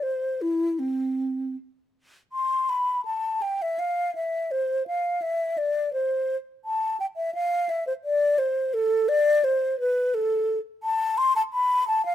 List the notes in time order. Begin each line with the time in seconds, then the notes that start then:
0.03 C5
0.42 E4
0.79 C4
2.32 C6
2.69 B5
3.05 A5
3.42 G5
3.62 E5
3.79 F5
4.15 E5
4.51 C5
4.87 F5
5.22 E5
5.58 D5
5.93 C5
6.65 A5
7.00 G5
7.16 E5
7.35 F5
7.69 E5
7.87 C5
8.04 D5
8.38 C5
8.74 A4
9.09 D5
9.44 C5
9.80 B4
10.14 A4
10.83 A5
11.18 C6
11.36 A5
11.53 B5
11.88 A5
12.05 F5